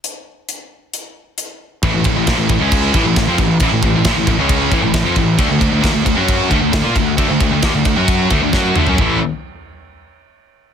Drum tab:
CC |----------------|x-x-x-x-x-x-x-x-|x-x-x-x-x-x-x-x-|x-x-x-x-x-x-x-x-|
HH |x---x---x---x---|----------------|----------------|----------------|
SD |----------------|----o-------o---|----o-------o---|----o-------o---|
T2 |----------------|----------------|----------------|----------------|
FT |----------------|----------------|----------------|----------------|
BD |----------------|o-o-o-o-o-o-o-o-|o-o-o-o-o-o-o-o-|o-o-o-o-o-o-o-o-|

CC |x-x-x-x-x-x-----|----------------|
HH |----------------|----------------|
SD |----o-------o---|----------------|
T2 |--------------o-|----------------|
FT |---------------o|----------------|
BD |o-o-o-o-o-o-o---|o---------------|